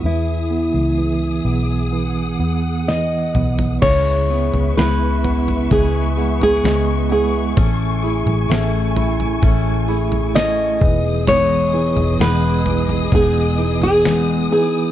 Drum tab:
CC |----------------|x---------------|----------------|----------------|
SD |------------o---|----o-------o---|----o-------o---|----o-------o---|
T2 |--------------o-|----------------|----------------|----------------|
FT |---------------o|o--o--ooo--o----|o--o--ooo--o----|o--o--ooo--o----|
BD |----------------|o-------o-------|o-------o-----o-|--------o-------|